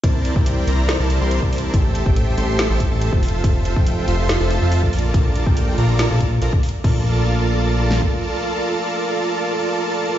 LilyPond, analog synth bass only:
\new Staff \with { instrumentName = "Analog synth bass" } { \clef bass \time 4/4 \key bes \lydian \tempo 4 = 141 c,8. c,8. c,8. c,8 c,8 c,8. | a,,8. a,,8. a,,8. a,,8 a,,8 f,,8. | f,,8. f,,8. f,,8. f,,8 f,8 bes,,8. | bes,,8. bes,,8. bes,,8. bes,,8. bes,,16 r8. |
bes,,2. r4 | r1 | }